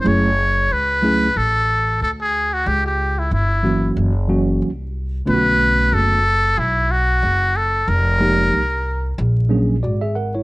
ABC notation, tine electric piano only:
X:1
M:4/4
L:1/16
Q:"Swing 16ths" 1/4=92
K:Bmix
V:1 name="Tine electric piano"
[F,A,CEG]2 z4 [F,A,CEG]2 z8 | z6 [E,F,^A,CF]2 z2 [E,F,A,CF]2 z4 | [=D,A,B,C^EF]6 z8 z2 | z2 [=F,_A,_B,_E=G]2 z6 [^F,^A,C=D^G]2 [F=d] [G=e] [^Af] [=Ec] |]